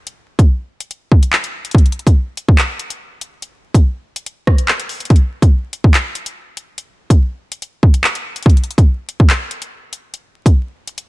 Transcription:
0.07 closed hi-hat medium
0.39 kick loud
0.39 closed hi-hat medium
0.80 closed hi-hat medium
0.91 closed hi-hat medium
1.12 kick loud
1.23 closed hi-hat medium
1.33 clap loud
1.44 closed hi-hat medium
1.65 closed hi-hat medium
1.71 kick loud
1.71 closed hi-hat medium
1.78 closed hi-hat medium
1.86 closed hi-hat medium
1.92 closed hi-hat medium
1.99 closed hi-hat medium
2.07 kick loud
2.07 closed hi-hat medium
2.37 closed hi-hat medium
2.48 kick loud
2.58 clap loud
2.58 closed hi-hat medium
2.80 closed hi-hat medium
2.90 closed hi-hat medium
3.21 closed hi-hat medium
3.42 closed hi-hat medium
3.74 kick loud
3.74 closed hi-hat medium
4.16 closed hi-hat medium
4.26 closed hi-hat medium
4.47 kick loud
4.47 cross-stick loud
4.58 closed hi-hat medium
4.68 clap loud
4.80 closed hi-hat medium
4.89 open hi-hat medium
5.00 closed hi-hat medium
5.05 closed hi-hat medium
5.10 kick loud
5.10 closed hi-hat medium
5.16 closed hi-hat medium
5.42 kick loud
5.42 closed hi-hat medium
5.73 closed hi-hat medium
5.84 kick loud
5.94 clap loud
5.94 closed hi-hat medium
6.15 closed hi-hat medium
6.26 closed hi-hat medium
6.57 closed hi-hat medium
6.78 closed hi-hat medium
7.10 kick loud
7.10 closed hi-hat medium
7.52 closed hi-hat medium
7.62 closed hi-hat medium
7.83 kick loud
7.94 closed hi-hat medium
8.04 clap loud
8.15 closed hi-hat medium
8.36 closed hi-hat medium
8.43 kick loud
8.43 closed hi-hat medium
8.50 closed hi-hat medium
8.57 closed hi-hat medium
8.64 closed hi-hat medium
8.71 closed hi-hat medium
8.78 kick loud
8.78 closed hi-hat medium
9.09 closed hi-hat medium
9.20 kick loud
9.30 clap loud
9.30 closed hi-hat medium
9.51 closed hi-hat medium
9.62 closed hi-hat medium
9.93 closed hi-hat medium
10.14 closed hi-hat medium
10.46 kick loud
10.46 closed hi-hat medium
10.87 closed hi-hat medium
10.98 closed hi-hat medium

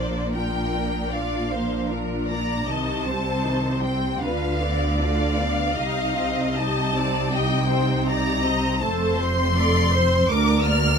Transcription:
0.00 2.65 A#1 soft
0.00 2.66 A#2 soft
0.00 0.35 A#3 soft
0.00 0.34 D4 soft
0.00 0.34 C5 soft
0.00 0.33 D5 medium
0.33 0.74 D4 soft
0.33 0.75 F4 soft
0.33 1.11 A#4 soft
0.33 1.12 G5 medium
0.74 1.14 A#3 soft
0.74 1.12 D4 soft
1.12 1.50 D4 soft
1.12 1.50 F4 soft
1.12 1.52 D5 soft
1.12 1.93 F5 soft
1.51 1.92 A#3 soft
1.51 1.92 D4 soft
1.51 1.91 C5 soft
1.88 2.29 A#4 soft
1.93 2.30 D4 soft
1.93 2.31 F4 soft
2.27 2.69 A#3 soft
2.27 2.69 D4 soft
2.27 2.67 D5 soft
2.27 2.66 A#5 medium
2.68 4.20 C2 soft
2.68 4.21 C3 soft
2.68 3.05 D#3 soft
2.68 3.05 D#4 soft
2.68 3.06 D#5 soft
2.68 3.84 A5 medium
3.05 3.45 G3 soft
3.05 3.45 C4 soft
3.05 4.22 C5 soft
3.45 3.84 D#3 soft
3.45 3.84 D#4 soft
3.83 4.22 G3 soft
3.83 4.22 C4 soft
3.83 4.22 G5 medium
4.22 5.76 D2 soft
4.22 5.76 D3 soft
4.22 4.59 D4 soft
4.22 4.59 F4 soft
4.22 4.61 B4 soft
4.22 5.00 F5 medium
4.62 5.00 B3 soft
4.62 4.99 D4 soft
4.62 5.01 D5 soft
5.00 5.37 D4 soft
5.00 5.38 F4 soft
5.00 5.74 D5 medium
5.00 6.57 F5 medium
5.38 5.76 B3 soft
5.38 5.76 D4 soft
5.75 8.83 C2 soft
5.75 8.83 C3 soft
5.75 6.14 D#4 soft
5.75 6.14 G4 soft
5.75 6.57 D#5 medium
6.17 6.58 C4 soft
6.17 6.56 D#4 soft
6.57 6.95 D#4 soft
6.57 6.96 G4 soft
6.57 6.96 D#5 medium
6.57 7.33 A5 medium
6.96 7.33 C4 soft
6.96 7.31 D#4 soft
6.96 7.33 D5 medium
7.32 7.67 D#4 soft
7.32 7.67 G4 soft
7.32 7.70 D#5 medium
7.32 8.07 G5 medium
7.69 8.07 C4 soft
7.69 8.07 D#4 soft
7.69 8.06 C5 medium
8.06 8.44 D#4 soft
8.06 8.45 G4 soft
8.06 8.44 D5 medium
8.06 8.81 A#5 medium
8.44 8.83 C4 soft
8.44 8.82 D#4 soft
8.44 8.82 D#5 medium
8.81 10.31 F1 medium
8.81 10.31 F2 medium
8.81 9.18 A3 soft
8.81 9.18 A4 soft
8.81 9.55 C5 medium
8.81 9.20 A5 medium
9.20 9.57 C4 soft
9.20 9.57 C5 soft
9.20 10.31 C6 medium
9.55 9.94 A3 soft
9.55 9.94 A4 soft
9.55 9.93 D5 medium
9.93 10.30 C4 soft
9.93 10.30 C5 medium
10.30 10.98 D2 medium
10.30 10.65 D4 soft
10.30 10.98 A#4 medium
10.30 10.65 A#4 soft
10.30 10.67 D6 medium
10.66 10.98 A#3 soft
10.66 10.98 D5 soft
10.66 10.98 F6 medium

